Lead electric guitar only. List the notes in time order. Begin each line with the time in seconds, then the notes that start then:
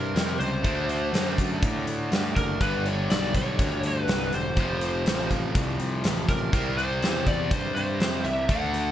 Already playing: A#4
0.40 C5
2.37 A#4
2.62 B4
2.87 C#5
3.11 D5
3.36 C#5
3.87 B4
4.35 C5
6.30 A#4
6.78 C5
7.27 D5
7.52 C5
7.75 C5
8.24 E5
8.50 F#5